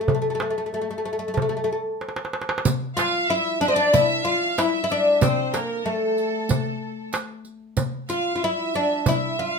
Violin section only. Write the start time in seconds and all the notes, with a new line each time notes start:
2.96 F5
3.29 E5
3.63 D5
3.93 E5
4.26 F5
4.59 E5
5.22 C5
5.53 A#4
5.85 A4
8.11 F5
8.42 E5
9.06 E5
9.38 F5